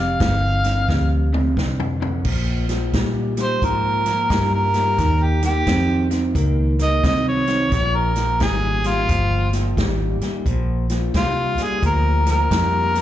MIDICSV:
0, 0, Header, 1, 6, 480
1, 0, Start_track
1, 0, Tempo, 684151
1, 1579, Time_signature, 4, 2, 24, 8
1, 9133, End_track
2, 0, Start_track
2, 0, Title_t, "Harmonica"
2, 0, Program_c, 0, 22
2, 0, Note_on_c, 0, 77, 106
2, 918, Note_off_c, 0, 77, 0
2, 2402, Note_on_c, 0, 72, 91
2, 2558, Note_on_c, 0, 70, 99
2, 2568, Note_off_c, 0, 72, 0
2, 3169, Note_off_c, 0, 70, 0
2, 3190, Note_on_c, 0, 70, 91
2, 3671, Note_on_c, 0, 67, 75
2, 3681, Note_off_c, 0, 70, 0
2, 3820, Note_off_c, 0, 67, 0
2, 3829, Note_on_c, 0, 67, 103
2, 4289, Note_off_c, 0, 67, 0
2, 4789, Note_on_c, 0, 75, 97
2, 4939, Note_off_c, 0, 75, 0
2, 4960, Note_on_c, 0, 75, 94
2, 5104, Note_off_c, 0, 75, 0
2, 5110, Note_on_c, 0, 73, 92
2, 5586, Note_on_c, 0, 70, 88
2, 5596, Note_off_c, 0, 73, 0
2, 5915, Note_on_c, 0, 68, 89
2, 5925, Note_off_c, 0, 70, 0
2, 6223, Note_on_c, 0, 65, 110
2, 6233, Note_off_c, 0, 68, 0
2, 6686, Note_off_c, 0, 65, 0
2, 7837, Note_on_c, 0, 65, 94
2, 8160, Note_on_c, 0, 68, 89
2, 8171, Note_off_c, 0, 65, 0
2, 8304, Note_off_c, 0, 68, 0
2, 8320, Note_on_c, 0, 70, 93
2, 8619, Note_off_c, 0, 70, 0
2, 8640, Note_on_c, 0, 70, 119
2, 9133, Note_off_c, 0, 70, 0
2, 9133, End_track
3, 0, Start_track
3, 0, Title_t, "Clean electric guitar"
3, 0, Program_c, 1, 27
3, 0, Note_on_c, 1, 41, 62
3, 0, Note_on_c, 1, 48, 70
3, 125, Note_off_c, 1, 41, 0
3, 125, Note_off_c, 1, 48, 0
3, 142, Note_on_c, 1, 41, 68
3, 145, Note_on_c, 1, 50, 79
3, 418, Note_off_c, 1, 41, 0
3, 419, Note_off_c, 1, 50, 0
3, 450, Note_on_c, 1, 41, 65
3, 454, Note_on_c, 1, 50, 70
3, 605, Note_off_c, 1, 41, 0
3, 606, Note_off_c, 1, 50, 0
3, 622, Note_on_c, 1, 41, 71
3, 625, Note_on_c, 1, 48, 70
3, 897, Note_off_c, 1, 41, 0
3, 899, Note_off_c, 1, 48, 0
3, 930, Note_on_c, 1, 41, 64
3, 933, Note_on_c, 1, 48, 63
3, 1084, Note_off_c, 1, 41, 0
3, 1086, Note_off_c, 1, 48, 0
3, 1100, Note_on_c, 1, 41, 68
3, 1104, Note_on_c, 1, 50, 78
3, 1376, Note_off_c, 1, 41, 0
3, 1378, Note_off_c, 1, 50, 0
3, 1406, Note_on_c, 1, 41, 77
3, 1411, Note_on_c, 1, 50, 93
3, 1562, Note_off_c, 1, 41, 0
3, 1564, Note_off_c, 1, 50, 0
3, 1582, Note_on_c, 1, 46, 71
3, 1585, Note_on_c, 1, 53, 74
3, 1857, Note_off_c, 1, 46, 0
3, 1858, Note_off_c, 1, 53, 0
3, 1886, Note_on_c, 1, 46, 68
3, 1890, Note_on_c, 1, 53, 76
3, 2042, Note_off_c, 1, 46, 0
3, 2043, Note_off_c, 1, 53, 0
3, 2058, Note_on_c, 1, 46, 72
3, 2062, Note_on_c, 1, 55, 80
3, 2335, Note_off_c, 1, 46, 0
3, 2336, Note_off_c, 1, 55, 0
3, 2365, Note_on_c, 1, 46, 64
3, 2370, Note_on_c, 1, 55, 72
3, 2521, Note_off_c, 1, 46, 0
3, 2523, Note_off_c, 1, 55, 0
3, 2543, Note_on_c, 1, 46, 62
3, 2546, Note_on_c, 1, 53, 80
3, 2817, Note_off_c, 1, 46, 0
3, 2818, Note_off_c, 1, 53, 0
3, 2849, Note_on_c, 1, 46, 62
3, 2852, Note_on_c, 1, 53, 62
3, 3003, Note_off_c, 1, 46, 0
3, 3004, Note_off_c, 1, 53, 0
3, 3020, Note_on_c, 1, 46, 73
3, 3022, Note_on_c, 1, 55, 75
3, 3295, Note_off_c, 1, 46, 0
3, 3296, Note_off_c, 1, 55, 0
3, 3326, Note_on_c, 1, 46, 81
3, 3328, Note_on_c, 1, 55, 84
3, 3481, Note_off_c, 1, 46, 0
3, 3482, Note_off_c, 1, 55, 0
3, 3500, Note_on_c, 1, 51, 78
3, 3502, Note_on_c, 1, 58, 76
3, 3775, Note_off_c, 1, 51, 0
3, 3776, Note_off_c, 1, 58, 0
3, 3806, Note_on_c, 1, 51, 68
3, 3808, Note_on_c, 1, 58, 73
3, 3961, Note_off_c, 1, 51, 0
3, 3962, Note_off_c, 1, 58, 0
3, 3980, Note_on_c, 1, 51, 78
3, 3983, Note_on_c, 1, 60, 85
3, 4255, Note_off_c, 1, 51, 0
3, 4257, Note_off_c, 1, 60, 0
3, 4283, Note_on_c, 1, 51, 73
3, 4286, Note_on_c, 1, 60, 71
3, 4440, Note_off_c, 1, 51, 0
3, 4441, Note_off_c, 1, 60, 0
3, 4456, Note_on_c, 1, 51, 84
3, 4458, Note_on_c, 1, 58, 82
3, 4733, Note_off_c, 1, 51, 0
3, 4734, Note_off_c, 1, 58, 0
3, 4764, Note_on_c, 1, 51, 60
3, 4767, Note_on_c, 1, 58, 71
3, 4920, Note_off_c, 1, 51, 0
3, 4922, Note_off_c, 1, 58, 0
3, 4936, Note_on_c, 1, 51, 66
3, 4939, Note_on_c, 1, 60, 83
3, 5213, Note_off_c, 1, 51, 0
3, 5215, Note_off_c, 1, 60, 0
3, 5245, Note_on_c, 1, 51, 90
3, 5248, Note_on_c, 1, 60, 86
3, 5401, Note_off_c, 1, 51, 0
3, 5402, Note_off_c, 1, 60, 0
3, 5418, Note_on_c, 1, 46, 72
3, 5421, Note_on_c, 1, 53, 84
3, 5694, Note_off_c, 1, 46, 0
3, 5696, Note_off_c, 1, 53, 0
3, 5726, Note_on_c, 1, 46, 68
3, 5729, Note_on_c, 1, 53, 78
3, 5881, Note_off_c, 1, 46, 0
3, 5883, Note_off_c, 1, 53, 0
3, 5898, Note_on_c, 1, 46, 79
3, 5900, Note_on_c, 1, 55, 84
3, 6175, Note_off_c, 1, 46, 0
3, 6175, Note_off_c, 1, 55, 0
3, 6205, Note_on_c, 1, 46, 71
3, 6208, Note_on_c, 1, 55, 80
3, 6361, Note_off_c, 1, 46, 0
3, 6362, Note_off_c, 1, 55, 0
3, 6375, Note_on_c, 1, 46, 70
3, 6380, Note_on_c, 1, 53, 84
3, 6653, Note_off_c, 1, 46, 0
3, 6655, Note_off_c, 1, 53, 0
3, 6686, Note_on_c, 1, 46, 62
3, 6689, Note_on_c, 1, 53, 71
3, 6841, Note_off_c, 1, 46, 0
3, 6843, Note_off_c, 1, 53, 0
3, 6862, Note_on_c, 1, 46, 76
3, 6863, Note_on_c, 1, 55, 82
3, 7136, Note_off_c, 1, 46, 0
3, 7137, Note_off_c, 1, 55, 0
3, 7167, Note_on_c, 1, 46, 81
3, 7171, Note_on_c, 1, 55, 85
3, 7322, Note_off_c, 1, 46, 0
3, 7324, Note_off_c, 1, 55, 0
3, 7341, Note_on_c, 1, 46, 74
3, 7344, Note_on_c, 1, 53, 82
3, 7616, Note_off_c, 1, 46, 0
3, 7617, Note_off_c, 1, 53, 0
3, 7648, Note_on_c, 1, 46, 69
3, 7650, Note_on_c, 1, 53, 67
3, 7802, Note_off_c, 1, 46, 0
3, 7803, Note_off_c, 1, 53, 0
3, 7819, Note_on_c, 1, 46, 75
3, 7822, Note_on_c, 1, 55, 83
3, 8094, Note_off_c, 1, 46, 0
3, 8096, Note_off_c, 1, 55, 0
3, 8123, Note_on_c, 1, 46, 67
3, 8127, Note_on_c, 1, 55, 77
3, 8279, Note_off_c, 1, 46, 0
3, 8281, Note_off_c, 1, 55, 0
3, 8294, Note_on_c, 1, 46, 80
3, 8298, Note_on_c, 1, 53, 81
3, 8572, Note_off_c, 1, 46, 0
3, 8574, Note_off_c, 1, 53, 0
3, 8602, Note_on_c, 1, 46, 67
3, 8605, Note_on_c, 1, 53, 69
3, 8759, Note_off_c, 1, 46, 0
3, 8760, Note_off_c, 1, 53, 0
3, 8775, Note_on_c, 1, 46, 73
3, 8778, Note_on_c, 1, 55, 74
3, 9052, Note_off_c, 1, 46, 0
3, 9053, Note_off_c, 1, 55, 0
3, 9082, Note_on_c, 1, 46, 77
3, 9085, Note_on_c, 1, 55, 86
3, 9133, Note_off_c, 1, 46, 0
3, 9133, Note_off_c, 1, 55, 0
3, 9133, End_track
4, 0, Start_track
4, 0, Title_t, "Fingered electric bass"
4, 0, Program_c, 2, 33
4, 0, Note_on_c, 2, 29, 72
4, 128, Note_off_c, 2, 29, 0
4, 143, Note_on_c, 2, 31, 87
4, 607, Note_off_c, 2, 31, 0
4, 621, Note_on_c, 2, 38, 73
4, 1086, Note_off_c, 2, 38, 0
4, 1099, Note_on_c, 2, 36, 79
4, 1564, Note_off_c, 2, 36, 0
4, 1580, Note_on_c, 2, 34, 76
4, 2045, Note_off_c, 2, 34, 0
4, 2059, Note_on_c, 2, 46, 86
4, 2524, Note_off_c, 2, 46, 0
4, 2540, Note_on_c, 2, 44, 83
4, 3004, Note_off_c, 2, 44, 0
4, 3019, Note_on_c, 2, 43, 82
4, 3484, Note_off_c, 2, 43, 0
4, 3496, Note_on_c, 2, 39, 75
4, 3963, Note_off_c, 2, 39, 0
4, 3976, Note_on_c, 2, 41, 82
4, 4443, Note_off_c, 2, 41, 0
4, 4454, Note_on_c, 2, 37, 82
4, 4922, Note_off_c, 2, 37, 0
4, 4936, Note_on_c, 2, 36, 88
4, 5403, Note_off_c, 2, 36, 0
4, 5416, Note_on_c, 2, 34, 82
4, 5883, Note_off_c, 2, 34, 0
4, 5893, Note_on_c, 2, 32, 89
4, 6361, Note_off_c, 2, 32, 0
4, 6374, Note_on_c, 2, 31, 84
4, 6841, Note_off_c, 2, 31, 0
4, 6856, Note_on_c, 2, 32, 89
4, 7143, Note_off_c, 2, 32, 0
4, 7336, Note_on_c, 2, 34, 85
4, 7802, Note_off_c, 2, 34, 0
4, 7815, Note_on_c, 2, 36, 89
4, 8101, Note_off_c, 2, 36, 0
4, 8297, Note_on_c, 2, 38, 81
4, 8762, Note_off_c, 2, 38, 0
4, 8777, Note_on_c, 2, 41, 82
4, 9133, Note_off_c, 2, 41, 0
4, 9133, End_track
5, 0, Start_track
5, 0, Title_t, "Muted fingered electric bass strokes"
5, 7158, Note_on_c, 9, 29, 37
5, 7229, Note_off_c, 9, 29, 0
5, 8121, Note_on_c, 9, 29, 35
5, 8192, Note_off_c, 9, 29, 0
5, 9133, End_track
6, 0, Start_track
6, 0, Title_t, "Drums"
6, 141, Note_on_c, 9, 42, 77
6, 142, Note_on_c, 9, 36, 88
6, 146, Note_on_c, 9, 38, 108
6, 211, Note_off_c, 9, 42, 0
6, 213, Note_off_c, 9, 36, 0
6, 216, Note_off_c, 9, 38, 0
6, 450, Note_on_c, 9, 42, 59
6, 456, Note_on_c, 9, 38, 30
6, 520, Note_off_c, 9, 42, 0
6, 526, Note_off_c, 9, 38, 0
6, 622, Note_on_c, 9, 36, 76
6, 625, Note_on_c, 9, 38, 52
6, 692, Note_off_c, 9, 36, 0
6, 696, Note_off_c, 9, 38, 0
6, 940, Note_on_c, 9, 47, 72
6, 1010, Note_off_c, 9, 47, 0
6, 1102, Note_on_c, 9, 36, 71
6, 1107, Note_on_c, 9, 38, 63
6, 1172, Note_off_c, 9, 36, 0
6, 1177, Note_off_c, 9, 38, 0
6, 1261, Note_on_c, 9, 43, 85
6, 1331, Note_off_c, 9, 43, 0
6, 1418, Note_on_c, 9, 43, 84
6, 1489, Note_off_c, 9, 43, 0
6, 1576, Note_on_c, 9, 49, 98
6, 1580, Note_on_c, 9, 36, 75
6, 1646, Note_off_c, 9, 49, 0
6, 1650, Note_off_c, 9, 36, 0
6, 1886, Note_on_c, 9, 42, 63
6, 1892, Note_on_c, 9, 38, 35
6, 1957, Note_off_c, 9, 42, 0
6, 1962, Note_off_c, 9, 38, 0
6, 2058, Note_on_c, 9, 42, 78
6, 2060, Note_on_c, 9, 36, 77
6, 2064, Note_on_c, 9, 38, 106
6, 2128, Note_off_c, 9, 42, 0
6, 2130, Note_off_c, 9, 36, 0
6, 2134, Note_off_c, 9, 38, 0
6, 2364, Note_on_c, 9, 42, 54
6, 2370, Note_on_c, 9, 38, 29
6, 2435, Note_off_c, 9, 42, 0
6, 2440, Note_off_c, 9, 38, 0
6, 2540, Note_on_c, 9, 36, 78
6, 2541, Note_on_c, 9, 42, 68
6, 2610, Note_off_c, 9, 36, 0
6, 2611, Note_off_c, 9, 42, 0
6, 2846, Note_on_c, 9, 42, 60
6, 2852, Note_on_c, 9, 38, 34
6, 2916, Note_off_c, 9, 42, 0
6, 2922, Note_off_c, 9, 38, 0
6, 3018, Note_on_c, 9, 36, 78
6, 3018, Note_on_c, 9, 42, 75
6, 3024, Note_on_c, 9, 38, 108
6, 3088, Note_off_c, 9, 36, 0
6, 3089, Note_off_c, 9, 42, 0
6, 3094, Note_off_c, 9, 38, 0
6, 3325, Note_on_c, 9, 42, 56
6, 3330, Note_on_c, 9, 38, 32
6, 3395, Note_off_c, 9, 42, 0
6, 3401, Note_off_c, 9, 38, 0
6, 3496, Note_on_c, 9, 42, 78
6, 3497, Note_on_c, 9, 36, 74
6, 3502, Note_on_c, 9, 38, 29
6, 3566, Note_off_c, 9, 42, 0
6, 3567, Note_off_c, 9, 36, 0
6, 3572, Note_off_c, 9, 38, 0
6, 3806, Note_on_c, 9, 42, 62
6, 3811, Note_on_c, 9, 38, 35
6, 3876, Note_off_c, 9, 42, 0
6, 3882, Note_off_c, 9, 38, 0
6, 3976, Note_on_c, 9, 42, 87
6, 3977, Note_on_c, 9, 36, 80
6, 3981, Note_on_c, 9, 38, 98
6, 4046, Note_off_c, 9, 42, 0
6, 4047, Note_off_c, 9, 36, 0
6, 4051, Note_off_c, 9, 38, 0
6, 4285, Note_on_c, 9, 42, 59
6, 4291, Note_on_c, 9, 38, 31
6, 4355, Note_off_c, 9, 42, 0
6, 4361, Note_off_c, 9, 38, 0
6, 4456, Note_on_c, 9, 36, 79
6, 4457, Note_on_c, 9, 42, 76
6, 4526, Note_off_c, 9, 36, 0
6, 4527, Note_off_c, 9, 42, 0
6, 4765, Note_on_c, 9, 42, 65
6, 4771, Note_on_c, 9, 38, 37
6, 4835, Note_off_c, 9, 42, 0
6, 4841, Note_off_c, 9, 38, 0
6, 4937, Note_on_c, 9, 36, 81
6, 4938, Note_on_c, 9, 42, 74
6, 4943, Note_on_c, 9, 38, 98
6, 5007, Note_off_c, 9, 36, 0
6, 5008, Note_off_c, 9, 42, 0
6, 5014, Note_off_c, 9, 38, 0
6, 5243, Note_on_c, 9, 42, 56
6, 5249, Note_on_c, 9, 38, 34
6, 5314, Note_off_c, 9, 42, 0
6, 5319, Note_off_c, 9, 38, 0
6, 5415, Note_on_c, 9, 36, 80
6, 5415, Note_on_c, 9, 42, 73
6, 5420, Note_on_c, 9, 38, 28
6, 5485, Note_off_c, 9, 42, 0
6, 5486, Note_off_c, 9, 36, 0
6, 5490, Note_off_c, 9, 38, 0
6, 5722, Note_on_c, 9, 42, 62
6, 5727, Note_on_c, 9, 38, 35
6, 5792, Note_off_c, 9, 42, 0
6, 5797, Note_off_c, 9, 38, 0
6, 5894, Note_on_c, 9, 42, 73
6, 5895, Note_on_c, 9, 36, 74
6, 5899, Note_on_c, 9, 38, 113
6, 5964, Note_off_c, 9, 42, 0
6, 5965, Note_off_c, 9, 36, 0
6, 5969, Note_off_c, 9, 38, 0
6, 6203, Note_on_c, 9, 42, 54
6, 6208, Note_on_c, 9, 38, 33
6, 6273, Note_off_c, 9, 42, 0
6, 6278, Note_off_c, 9, 38, 0
6, 6376, Note_on_c, 9, 36, 80
6, 6376, Note_on_c, 9, 42, 69
6, 6446, Note_off_c, 9, 36, 0
6, 6446, Note_off_c, 9, 42, 0
6, 6686, Note_on_c, 9, 42, 61
6, 6692, Note_on_c, 9, 38, 33
6, 6756, Note_off_c, 9, 42, 0
6, 6762, Note_off_c, 9, 38, 0
6, 6857, Note_on_c, 9, 36, 74
6, 6859, Note_on_c, 9, 42, 74
6, 6864, Note_on_c, 9, 38, 113
6, 6927, Note_off_c, 9, 36, 0
6, 6929, Note_off_c, 9, 42, 0
6, 6934, Note_off_c, 9, 38, 0
6, 7166, Note_on_c, 9, 42, 51
6, 7172, Note_on_c, 9, 38, 32
6, 7236, Note_off_c, 9, 42, 0
6, 7242, Note_off_c, 9, 38, 0
6, 7337, Note_on_c, 9, 36, 72
6, 7338, Note_on_c, 9, 42, 71
6, 7407, Note_off_c, 9, 36, 0
6, 7408, Note_off_c, 9, 42, 0
6, 7644, Note_on_c, 9, 42, 61
6, 7649, Note_on_c, 9, 38, 36
6, 7714, Note_off_c, 9, 42, 0
6, 7719, Note_off_c, 9, 38, 0
6, 7817, Note_on_c, 9, 36, 81
6, 7817, Note_on_c, 9, 42, 80
6, 7822, Note_on_c, 9, 38, 113
6, 7887, Note_off_c, 9, 36, 0
6, 7887, Note_off_c, 9, 42, 0
6, 7893, Note_off_c, 9, 38, 0
6, 8124, Note_on_c, 9, 42, 60
6, 8129, Note_on_c, 9, 38, 32
6, 8194, Note_off_c, 9, 42, 0
6, 8199, Note_off_c, 9, 38, 0
6, 8295, Note_on_c, 9, 42, 74
6, 8297, Note_on_c, 9, 36, 78
6, 8365, Note_off_c, 9, 42, 0
6, 8367, Note_off_c, 9, 36, 0
6, 8605, Note_on_c, 9, 42, 62
6, 8611, Note_on_c, 9, 38, 36
6, 8675, Note_off_c, 9, 42, 0
6, 8681, Note_off_c, 9, 38, 0
6, 8778, Note_on_c, 9, 36, 73
6, 8778, Note_on_c, 9, 42, 88
6, 8784, Note_on_c, 9, 38, 105
6, 8848, Note_off_c, 9, 36, 0
6, 8849, Note_off_c, 9, 42, 0
6, 8854, Note_off_c, 9, 38, 0
6, 9088, Note_on_c, 9, 42, 56
6, 9093, Note_on_c, 9, 38, 31
6, 9133, Note_off_c, 9, 38, 0
6, 9133, Note_off_c, 9, 42, 0
6, 9133, End_track
0, 0, End_of_file